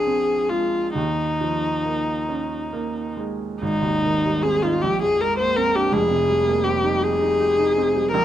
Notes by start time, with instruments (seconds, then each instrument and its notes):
Already playing: grand piano A#1 F3 C4 D4, viola G#4
0.07 grand piano C4
0.49 grand piano G#3, viola F4
0.95 grand piano D#2, viola D#4
1.41 grand piano F3
1.85 grand piano A#3
2.29 grand piano C#4
2.73 grand piano A#3
3.17 grand piano G#3
3.61 grand piano G#1, viola D#4
3.82 grand piano D#2
4.04 grand piano D#3
4.25 grand piano G3
4.43 grand piano C4, viola G#4
4.63 grand piano D#4, viola F4
4.82 grand piano A#1, viola G4
5.02 grand piano F2, viola G#4
5.21 grand piano G#3, viola A#4
5.39 grand piano A#3, viola C5
5.56 grand piano C4, viola A#4
5.75 grand piano D4, viola G4
5.92 grand piano F1 F2, viola G#4
6.10 grand piano C3
6.28 grand piano G3
6.47 grand piano A#3
6.64 grand piano C4, viola G4
6.83 grand piano D#4
7.02 grand piano G4, viola G#4
7.20 grand piano D#4
7.40 grand piano G4
7.59 grand piano D#4
7.77 grand piano C4
7.95 grand piano G3
8.11 grand piano A#1, viola A#4